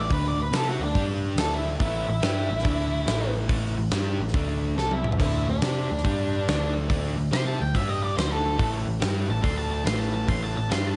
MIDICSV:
0, 0, Header, 1, 6, 480
1, 0, Start_track
1, 0, Tempo, 424028
1, 132, Time_signature, 4, 2, 24, 8
1, 12408, End_track
2, 0, Start_track
2, 0, Title_t, "Lead electric guitar"
2, 0, Program_c, 0, 29
2, 1, Note_on_c, 0, 74, 81
2, 138, Note_off_c, 0, 74, 0
2, 142, Note_on_c, 0, 71, 89
2, 293, Note_off_c, 0, 71, 0
2, 314, Note_on_c, 0, 74, 77
2, 459, Note_off_c, 0, 74, 0
2, 477, Note_on_c, 0, 71, 77
2, 619, Note_on_c, 0, 69, 85
2, 620, Note_off_c, 0, 71, 0
2, 770, Note_off_c, 0, 69, 0
2, 782, Note_on_c, 0, 66, 78
2, 925, Note_on_c, 0, 62, 88
2, 932, Note_off_c, 0, 66, 0
2, 1184, Note_off_c, 0, 62, 0
2, 1570, Note_on_c, 0, 69, 93
2, 1725, Note_off_c, 0, 69, 0
2, 1740, Note_on_c, 0, 64, 85
2, 1891, Note_off_c, 0, 64, 0
2, 2058, Note_on_c, 0, 64, 87
2, 2361, Note_off_c, 0, 64, 0
2, 2374, Note_on_c, 0, 64, 88
2, 3769, Note_off_c, 0, 64, 0
2, 5414, Note_on_c, 0, 69, 94
2, 5569, Note_off_c, 0, 69, 0
2, 5580, Note_on_c, 0, 64, 81
2, 5731, Note_off_c, 0, 64, 0
2, 5902, Note_on_c, 0, 64, 85
2, 6208, Note_off_c, 0, 64, 0
2, 6220, Note_on_c, 0, 62, 81
2, 7614, Note_off_c, 0, 62, 0
2, 8300, Note_on_c, 0, 84, 119
2, 8446, Note_off_c, 0, 84, 0
2, 8451, Note_on_c, 0, 81, 83
2, 8615, Note_off_c, 0, 81, 0
2, 8615, Note_on_c, 0, 79, 89
2, 8770, Note_off_c, 0, 79, 0
2, 8776, Note_on_c, 0, 76, 87
2, 8929, Note_off_c, 0, 76, 0
2, 8934, Note_on_c, 0, 75, 90
2, 9088, Note_on_c, 0, 74, 95
2, 9090, Note_off_c, 0, 75, 0
2, 9245, Note_off_c, 0, 74, 0
2, 9250, Note_on_c, 0, 72, 96
2, 9401, Note_on_c, 0, 69, 93
2, 9408, Note_off_c, 0, 72, 0
2, 9874, Note_off_c, 0, 69, 0
2, 10530, Note_on_c, 0, 81, 110
2, 10676, Note_off_c, 0, 81, 0
2, 10681, Note_on_c, 0, 84, 98
2, 10838, Note_off_c, 0, 84, 0
2, 10843, Note_on_c, 0, 81, 93
2, 10981, Note_off_c, 0, 81, 0
2, 10994, Note_on_c, 0, 81, 95
2, 11155, Note_off_c, 0, 81, 0
2, 11160, Note_on_c, 0, 84, 98
2, 11303, Note_off_c, 0, 84, 0
2, 11303, Note_on_c, 0, 81, 90
2, 11464, Note_off_c, 0, 81, 0
2, 11478, Note_on_c, 0, 81, 94
2, 11641, Note_off_c, 0, 81, 0
2, 11650, Note_on_c, 0, 84, 93
2, 11807, Note_off_c, 0, 84, 0
2, 11816, Note_on_c, 0, 81, 86
2, 11957, Note_off_c, 0, 81, 0
2, 11971, Note_on_c, 0, 81, 89
2, 12129, Note_off_c, 0, 81, 0
2, 12129, Note_on_c, 0, 84, 99
2, 12308, Note_off_c, 0, 84, 0
2, 12308, Note_on_c, 0, 81, 95
2, 12408, Note_off_c, 0, 81, 0
2, 12408, End_track
3, 0, Start_track
3, 0, Title_t, "Tonewheel organ"
3, 0, Program_c, 1, 16
3, 9681, Note_on_c, 1, 61, 73
3, 9683, Note_on_c, 1, 67, 69
3, 9695, Note_on_c, 1, 71, 67
3, 9696, Note_on_c, 1, 64, 68
3, 10640, Note_on_c, 1, 69, 68
3, 10652, Note_on_c, 1, 57, 69
3, 10658, Note_off_c, 1, 61, 0
3, 10658, Note_on_c, 1, 74, 72
3, 10659, Note_off_c, 1, 67, 0
3, 10659, Note_on_c, 1, 62, 65
3, 10665, Note_off_c, 1, 64, 0
3, 10665, Note_off_c, 1, 71, 0
3, 11142, Note_off_c, 1, 69, 0
3, 11146, Note_on_c, 1, 67, 72
3, 11148, Note_off_c, 1, 57, 0
3, 11150, Note_on_c, 1, 64, 68
3, 11150, Note_on_c, 1, 71, 70
3, 11151, Note_off_c, 1, 74, 0
3, 11152, Note_off_c, 1, 62, 0
3, 11153, Note_on_c, 1, 61, 71
3, 12408, Note_off_c, 1, 61, 0
3, 12408, Note_off_c, 1, 64, 0
3, 12408, Note_off_c, 1, 67, 0
3, 12408, Note_off_c, 1, 71, 0
3, 12408, End_track
4, 0, Start_track
4, 0, Title_t, "Overdriven electric guitar"
4, 0, Program_c, 2, 29
4, 0, Note_on_c, 2, 52, 84
4, 114, Note_on_c, 2, 50, 102
4, 118, Note_off_c, 2, 52, 0
4, 119, Note_on_c, 2, 62, 110
4, 123, Note_on_c, 2, 57, 99
4, 418, Note_off_c, 2, 50, 0
4, 426, Note_off_c, 2, 57, 0
4, 427, Note_off_c, 2, 62, 0
4, 431, Note_on_c, 2, 50, 59
4, 440, Note_on_c, 2, 57, 73
4, 572, Note_off_c, 2, 50, 0
4, 576, Note_off_c, 2, 57, 0
4, 590, Note_on_c, 2, 60, 84
4, 607, Note_on_c, 2, 67, 93
4, 610, Note_on_c, 2, 72, 97
4, 903, Note_off_c, 2, 60, 0
4, 911, Note_off_c, 2, 67, 0
4, 913, Note_off_c, 2, 72, 0
4, 920, Note_on_c, 2, 50, 59
4, 925, Note_on_c, 2, 57, 72
4, 1056, Note_off_c, 2, 50, 0
4, 1058, Note_off_c, 2, 57, 0
4, 1088, Note_on_c, 2, 55, 81
4, 1091, Note_on_c, 2, 62, 94
4, 1098, Note_on_c, 2, 67, 96
4, 1562, Note_off_c, 2, 55, 0
4, 1562, Note_off_c, 2, 62, 0
4, 1562, Note_on_c, 2, 50, 89
4, 1567, Note_on_c, 2, 57, 96
4, 1569, Note_off_c, 2, 67, 0
4, 1576, Note_on_c, 2, 62, 98
4, 2019, Note_off_c, 2, 50, 0
4, 2023, Note_on_c, 2, 45, 100
4, 2027, Note_off_c, 2, 57, 0
4, 2031, Note_on_c, 2, 52, 101
4, 2037, Note_off_c, 2, 62, 0
4, 2041, Note_on_c, 2, 57, 102
4, 2325, Note_off_c, 2, 45, 0
4, 2332, Note_off_c, 2, 52, 0
4, 2339, Note_on_c, 2, 45, 65
4, 2346, Note_on_c, 2, 52, 68
4, 2348, Note_off_c, 2, 57, 0
4, 2485, Note_off_c, 2, 45, 0
4, 2489, Note_off_c, 2, 52, 0
4, 2507, Note_on_c, 2, 55, 86
4, 2517, Note_on_c, 2, 62, 96
4, 2523, Note_on_c, 2, 67, 104
4, 2815, Note_on_c, 2, 45, 63
4, 2816, Note_off_c, 2, 55, 0
4, 2821, Note_on_c, 2, 52, 77
4, 2825, Note_off_c, 2, 62, 0
4, 2829, Note_off_c, 2, 67, 0
4, 2963, Note_off_c, 2, 45, 0
4, 2966, Note_off_c, 2, 52, 0
4, 2972, Note_on_c, 2, 50, 94
4, 2980, Note_on_c, 2, 57, 87
4, 2988, Note_on_c, 2, 62, 95
4, 3454, Note_off_c, 2, 57, 0
4, 3455, Note_off_c, 2, 50, 0
4, 3459, Note_on_c, 2, 45, 91
4, 3463, Note_off_c, 2, 62, 0
4, 3467, Note_on_c, 2, 57, 92
4, 3472, Note_on_c, 2, 52, 84
4, 3930, Note_off_c, 2, 45, 0
4, 3936, Note_off_c, 2, 52, 0
4, 3944, Note_on_c, 2, 45, 98
4, 3949, Note_off_c, 2, 57, 0
4, 3949, Note_on_c, 2, 52, 106
4, 3962, Note_on_c, 2, 57, 107
4, 4254, Note_off_c, 2, 45, 0
4, 4262, Note_off_c, 2, 52, 0
4, 4268, Note_on_c, 2, 45, 65
4, 4269, Note_off_c, 2, 57, 0
4, 4275, Note_on_c, 2, 52, 71
4, 4410, Note_off_c, 2, 45, 0
4, 4413, Note_off_c, 2, 52, 0
4, 4439, Note_on_c, 2, 62, 90
4, 4441, Note_on_c, 2, 55, 87
4, 4447, Note_on_c, 2, 67, 100
4, 4747, Note_off_c, 2, 62, 0
4, 4748, Note_off_c, 2, 55, 0
4, 4751, Note_off_c, 2, 67, 0
4, 4757, Note_on_c, 2, 45, 60
4, 4766, Note_on_c, 2, 52, 72
4, 4895, Note_off_c, 2, 45, 0
4, 4900, Note_off_c, 2, 52, 0
4, 4916, Note_on_c, 2, 50, 82
4, 4926, Note_on_c, 2, 57, 96
4, 4933, Note_on_c, 2, 62, 91
4, 5398, Note_off_c, 2, 50, 0
4, 5398, Note_on_c, 2, 48, 89
4, 5401, Note_off_c, 2, 57, 0
4, 5401, Note_on_c, 2, 55, 87
4, 5405, Note_off_c, 2, 62, 0
4, 5405, Note_on_c, 2, 60, 100
4, 5867, Note_off_c, 2, 48, 0
4, 5872, Note_on_c, 2, 50, 96
4, 5878, Note_off_c, 2, 55, 0
4, 5883, Note_on_c, 2, 57, 98
4, 5884, Note_off_c, 2, 60, 0
4, 5889, Note_on_c, 2, 62, 94
4, 6183, Note_off_c, 2, 57, 0
4, 6184, Note_off_c, 2, 50, 0
4, 6193, Note_off_c, 2, 62, 0
4, 6196, Note_on_c, 2, 50, 64
4, 6196, Note_on_c, 2, 57, 72
4, 6335, Note_off_c, 2, 50, 0
4, 6335, Note_off_c, 2, 57, 0
4, 6375, Note_on_c, 2, 60, 85
4, 6378, Note_on_c, 2, 67, 89
4, 6389, Note_on_c, 2, 72, 90
4, 6676, Note_off_c, 2, 60, 0
4, 6677, Note_off_c, 2, 67, 0
4, 6683, Note_off_c, 2, 72, 0
4, 6687, Note_on_c, 2, 50, 63
4, 6695, Note_on_c, 2, 57, 73
4, 6821, Note_off_c, 2, 50, 0
4, 6825, Note_off_c, 2, 57, 0
4, 6841, Note_on_c, 2, 55, 92
4, 6849, Note_on_c, 2, 62, 89
4, 6854, Note_on_c, 2, 67, 95
4, 7322, Note_off_c, 2, 55, 0
4, 7327, Note_off_c, 2, 62, 0
4, 7329, Note_off_c, 2, 67, 0
4, 7332, Note_on_c, 2, 50, 80
4, 7343, Note_on_c, 2, 57, 88
4, 7348, Note_on_c, 2, 62, 103
4, 7781, Note_off_c, 2, 50, 0
4, 7794, Note_on_c, 2, 50, 94
4, 7795, Note_off_c, 2, 57, 0
4, 7799, Note_off_c, 2, 62, 0
4, 7809, Note_on_c, 2, 57, 94
4, 7812, Note_on_c, 2, 62, 113
4, 8100, Note_off_c, 2, 50, 0
4, 8101, Note_off_c, 2, 57, 0
4, 8113, Note_on_c, 2, 50, 69
4, 8115, Note_off_c, 2, 62, 0
4, 8115, Note_on_c, 2, 57, 70
4, 8255, Note_off_c, 2, 50, 0
4, 8255, Note_off_c, 2, 57, 0
4, 8278, Note_on_c, 2, 67, 98
4, 8283, Note_on_c, 2, 60, 92
4, 8287, Note_on_c, 2, 72, 104
4, 8588, Note_on_c, 2, 50, 67
4, 8589, Note_off_c, 2, 67, 0
4, 8591, Note_off_c, 2, 60, 0
4, 8593, Note_off_c, 2, 72, 0
4, 8595, Note_on_c, 2, 57, 71
4, 8732, Note_off_c, 2, 50, 0
4, 8765, Note_off_c, 2, 57, 0
4, 8765, Note_on_c, 2, 55, 85
4, 8770, Note_on_c, 2, 62, 88
4, 8778, Note_on_c, 2, 67, 96
4, 9234, Note_on_c, 2, 50, 87
4, 9240, Note_off_c, 2, 62, 0
4, 9242, Note_off_c, 2, 55, 0
4, 9246, Note_on_c, 2, 57, 86
4, 9252, Note_off_c, 2, 67, 0
4, 9253, Note_on_c, 2, 62, 92
4, 9705, Note_off_c, 2, 57, 0
4, 9706, Note_off_c, 2, 50, 0
4, 9710, Note_on_c, 2, 45, 97
4, 9714, Note_off_c, 2, 62, 0
4, 9714, Note_on_c, 2, 52, 98
4, 9719, Note_on_c, 2, 57, 106
4, 10003, Note_off_c, 2, 45, 0
4, 10013, Note_off_c, 2, 52, 0
4, 10016, Note_on_c, 2, 45, 68
4, 10027, Note_on_c, 2, 52, 76
4, 10029, Note_off_c, 2, 57, 0
4, 10166, Note_off_c, 2, 45, 0
4, 10171, Note_off_c, 2, 52, 0
4, 10184, Note_on_c, 2, 55, 101
4, 10185, Note_on_c, 2, 62, 92
4, 10190, Note_on_c, 2, 67, 103
4, 10490, Note_on_c, 2, 45, 66
4, 10491, Note_off_c, 2, 55, 0
4, 10496, Note_on_c, 2, 52, 70
4, 10502, Note_off_c, 2, 62, 0
4, 10504, Note_off_c, 2, 67, 0
4, 10643, Note_off_c, 2, 45, 0
4, 10646, Note_off_c, 2, 52, 0
4, 10652, Note_on_c, 2, 50, 91
4, 10664, Note_on_c, 2, 57, 97
4, 10665, Note_on_c, 2, 62, 108
4, 11133, Note_off_c, 2, 50, 0
4, 11135, Note_off_c, 2, 57, 0
4, 11138, Note_on_c, 2, 45, 89
4, 11143, Note_on_c, 2, 52, 85
4, 11144, Note_off_c, 2, 62, 0
4, 11148, Note_on_c, 2, 57, 101
4, 11619, Note_off_c, 2, 45, 0
4, 11625, Note_off_c, 2, 52, 0
4, 11630, Note_off_c, 2, 57, 0
4, 11633, Note_on_c, 2, 45, 94
4, 11638, Note_on_c, 2, 52, 100
4, 11644, Note_on_c, 2, 57, 118
4, 11918, Note_off_c, 2, 45, 0
4, 11922, Note_off_c, 2, 52, 0
4, 11932, Note_on_c, 2, 45, 66
4, 11935, Note_on_c, 2, 52, 73
4, 11950, Note_off_c, 2, 57, 0
4, 12083, Note_off_c, 2, 45, 0
4, 12085, Note_off_c, 2, 52, 0
4, 12101, Note_on_c, 2, 55, 85
4, 12114, Note_on_c, 2, 62, 100
4, 12115, Note_on_c, 2, 67, 105
4, 12408, Note_off_c, 2, 55, 0
4, 12408, Note_off_c, 2, 62, 0
4, 12408, Note_off_c, 2, 67, 0
4, 12408, End_track
5, 0, Start_track
5, 0, Title_t, "Picked electric bass"
5, 0, Program_c, 3, 34
5, 121, Note_on_c, 3, 38, 91
5, 416, Note_off_c, 3, 38, 0
5, 427, Note_on_c, 3, 38, 74
5, 569, Note_off_c, 3, 38, 0
5, 576, Note_on_c, 3, 48, 83
5, 882, Note_off_c, 3, 48, 0
5, 896, Note_on_c, 3, 38, 74
5, 1065, Note_off_c, 3, 38, 0
5, 1078, Note_on_c, 3, 43, 84
5, 1525, Note_off_c, 3, 43, 0
5, 1532, Note_on_c, 3, 38, 90
5, 1996, Note_off_c, 3, 38, 0
5, 2045, Note_on_c, 3, 33, 84
5, 2337, Note_off_c, 3, 33, 0
5, 2359, Note_on_c, 3, 33, 76
5, 2513, Note_off_c, 3, 33, 0
5, 2520, Note_on_c, 3, 43, 84
5, 2814, Note_off_c, 3, 43, 0
5, 2836, Note_on_c, 3, 33, 75
5, 2990, Note_off_c, 3, 33, 0
5, 2997, Note_on_c, 3, 38, 95
5, 3449, Note_off_c, 3, 38, 0
5, 3485, Note_on_c, 3, 33, 90
5, 3934, Note_off_c, 3, 33, 0
5, 3953, Note_on_c, 3, 33, 87
5, 4251, Note_off_c, 3, 33, 0
5, 4281, Note_on_c, 3, 33, 74
5, 4439, Note_off_c, 3, 33, 0
5, 4445, Note_on_c, 3, 43, 82
5, 4730, Note_off_c, 3, 43, 0
5, 4737, Note_on_c, 3, 33, 76
5, 4906, Note_off_c, 3, 33, 0
5, 4917, Note_on_c, 3, 38, 86
5, 5370, Note_off_c, 3, 38, 0
5, 5409, Note_on_c, 3, 36, 82
5, 5857, Note_off_c, 3, 36, 0
5, 5885, Note_on_c, 3, 38, 88
5, 6178, Note_off_c, 3, 38, 0
5, 6195, Note_on_c, 3, 38, 74
5, 6356, Note_off_c, 3, 38, 0
5, 6364, Note_on_c, 3, 48, 90
5, 6658, Note_off_c, 3, 48, 0
5, 6682, Note_on_c, 3, 38, 77
5, 6840, Note_off_c, 3, 38, 0
5, 6856, Note_on_c, 3, 43, 94
5, 7301, Note_off_c, 3, 43, 0
5, 7345, Note_on_c, 3, 38, 88
5, 7787, Note_off_c, 3, 38, 0
5, 7815, Note_on_c, 3, 38, 93
5, 8104, Note_off_c, 3, 38, 0
5, 8128, Note_on_c, 3, 38, 73
5, 8284, Note_off_c, 3, 38, 0
5, 8295, Note_on_c, 3, 48, 82
5, 8584, Note_off_c, 3, 48, 0
5, 8610, Note_on_c, 3, 38, 76
5, 8762, Note_off_c, 3, 38, 0
5, 8769, Note_on_c, 3, 43, 89
5, 9218, Note_off_c, 3, 43, 0
5, 9249, Note_on_c, 3, 38, 85
5, 9699, Note_off_c, 3, 38, 0
5, 9731, Note_on_c, 3, 33, 85
5, 10022, Note_off_c, 3, 33, 0
5, 10046, Note_on_c, 3, 33, 79
5, 10203, Note_off_c, 3, 33, 0
5, 10217, Note_on_c, 3, 43, 95
5, 10506, Note_off_c, 3, 43, 0
5, 10519, Note_on_c, 3, 33, 80
5, 10679, Note_off_c, 3, 33, 0
5, 10693, Note_on_c, 3, 38, 96
5, 11140, Note_off_c, 3, 38, 0
5, 11153, Note_on_c, 3, 33, 85
5, 11609, Note_off_c, 3, 33, 0
5, 11645, Note_on_c, 3, 33, 90
5, 11938, Note_off_c, 3, 33, 0
5, 11971, Note_on_c, 3, 33, 74
5, 12125, Note_off_c, 3, 33, 0
5, 12138, Note_on_c, 3, 43, 87
5, 12408, Note_off_c, 3, 43, 0
5, 12408, End_track
6, 0, Start_track
6, 0, Title_t, "Drums"
6, 116, Note_on_c, 9, 46, 56
6, 119, Note_on_c, 9, 36, 95
6, 229, Note_off_c, 9, 46, 0
6, 232, Note_off_c, 9, 36, 0
6, 601, Note_on_c, 9, 46, 56
6, 607, Note_on_c, 9, 38, 113
6, 714, Note_off_c, 9, 46, 0
6, 720, Note_off_c, 9, 38, 0
6, 1077, Note_on_c, 9, 36, 97
6, 1079, Note_on_c, 9, 46, 57
6, 1190, Note_off_c, 9, 36, 0
6, 1192, Note_off_c, 9, 46, 0
6, 1558, Note_on_c, 9, 46, 59
6, 1564, Note_on_c, 9, 38, 114
6, 1671, Note_off_c, 9, 46, 0
6, 1677, Note_off_c, 9, 38, 0
6, 2039, Note_on_c, 9, 36, 101
6, 2050, Note_on_c, 9, 46, 57
6, 2152, Note_off_c, 9, 36, 0
6, 2163, Note_off_c, 9, 46, 0
6, 2520, Note_on_c, 9, 46, 55
6, 2525, Note_on_c, 9, 38, 106
6, 2633, Note_off_c, 9, 46, 0
6, 2639, Note_off_c, 9, 38, 0
6, 2928, Note_on_c, 9, 38, 28
6, 2999, Note_on_c, 9, 36, 101
6, 3001, Note_on_c, 9, 46, 55
6, 3041, Note_off_c, 9, 38, 0
6, 3112, Note_off_c, 9, 36, 0
6, 3114, Note_off_c, 9, 46, 0
6, 3481, Note_on_c, 9, 46, 55
6, 3487, Note_on_c, 9, 38, 113
6, 3594, Note_off_c, 9, 46, 0
6, 3600, Note_off_c, 9, 38, 0
6, 3955, Note_on_c, 9, 36, 106
6, 3959, Note_on_c, 9, 46, 56
6, 4068, Note_off_c, 9, 36, 0
6, 4072, Note_off_c, 9, 46, 0
6, 4429, Note_on_c, 9, 46, 51
6, 4434, Note_on_c, 9, 38, 106
6, 4542, Note_off_c, 9, 46, 0
6, 4547, Note_off_c, 9, 38, 0
6, 4844, Note_on_c, 9, 38, 29
6, 4914, Note_on_c, 9, 36, 105
6, 4915, Note_on_c, 9, 46, 53
6, 4957, Note_off_c, 9, 38, 0
6, 5027, Note_off_c, 9, 36, 0
6, 5028, Note_off_c, 9, 46, 0
6, 5411, Note_on_c, 9, 38, 61
6, 5524, Note_off_c, 9, 38, 0
6, 5560, Note_on_c, 9, 48, 60
6, 5673, Note_off_c, 9, 48, 0
6, 5709, Note_on_c, 9, 45, 76
6, 5799, Note_on_c, 9, 43, 83
6, 5822, Note_off_c, 9, 45, 0
6, 5883, Note_on_c, 9, 36, 99
6, 5887, Note_on_c, 9, 46, 53
6, 5887, Note_on_c, 9, 55, 79
6, 5912, Note_off_c, 9, 43, 0
6, 5996, Note_off_c, 9, 36, 0
6, 6000, Note_off_c, 9, 46, 0
6, 6000, Note_off_c, 9, 55, 0
6, 6359, Note_on_c, 9, 46, 53
6, 6365, Note_on_c, 9, 38, 115
6, 6472, Note_off_c, 9, 46, 0
6, 6478, Note_off_c, 9, 38, 0
6, 6764, Note_on_c, 9, 38, 32
6, 6845, Note_on_c, 9, 36, 98
6, 6850, Note_on_c, 9, 46, 56
6, 6877, Note_off_c, 9, 38, 0
6, 6958, Note_off_c, 9, 36, 0
6, 6964, Note_off_c, 9, 46, 0
6, 7339, Note_on_c, 9, 46, 54
6, 7345, Note_on_c, 9, 38, 107
6, 7452, Note_off_c, 9, 46, 0
6, 7458, Note_off_c, 9, 38, 0
6, 7809, Note_on_c, 9, 36, 101
6, 7814, Note_on_c, 9, 46, 56
6, 7923, Note_off_c, 9, 36, 0
6, 7928, Note_off_c, 9, 46, 0
6, 8296, Note_on_c, 9, 46, 53
6, 8302, Note_on_c, 9, 38, 105
6, 8409, Note_off_c, 9, 46, 0
6, 8415, Note_off_c, 9, 38, 0
6, 8771, Note_on_c, 9, 36, 97
6, 8777, Note_on_c, 9, 46, 57
6, 8884, Note_off_c, 9, 36, 0
6, 8890, Note_off_c, 9, 46, 0
6, 9262, Note_on_c, 9, 46, 60
6, 9267, Note_on_c, 9, 38, 105
6, 9375, Note_off_c, 9, 46, 0
6, 9380, Note_off_c, 9, 38, 0
6, 9728, Note_on_c, 9, 36, 100
6, 9735, Note_on_c, 9, 46, 55
6, 9842, Note_off_c, 9, 36, 0
6, 9848, Note_off_c, 9, 46, 0
6, 10207, Note_on_c, 9, 46, 63
6, 10213, Note_on_c, 9, 38, 117
6, 10320, Note_off_c, 9, 46, 0
6, 10326, Note_off_c, 9, 38, 0
6, 10684, Note_on_c, 9, 36, 96
6, 10692, Note_on_c, 9, 46, 62
6, 10797, Note_off_c, 9, 36, 0
6, 10806, Note_off_c, 9, 46, 0
6, 11168, Note_on_c, 9, 46, 58
6, 11174, Note_on_c, 9, 38, 108
6, 11281, Note_off_c, 9, 46, 0
6, 11287, Note_off_c, 9, 38, 0
6, 11642, Note_on_c, 9, 36, 97
6, 11646, Note_on_c, 9, 46, 57
6, 11755, Note_off_c, 9, 36, 0
6, 11759, Note_off_c, 9, 46, 0
6, 12127, Note_on_c, 9, 46, 55
6, 12133, Note_on_c, 9, 38, 110
6, 12240, Note_off_c, 9, 46, 0
6, 12246, Note_off_c, 9, 38, 0
6, 12408, End_track
0, 0, End_of_file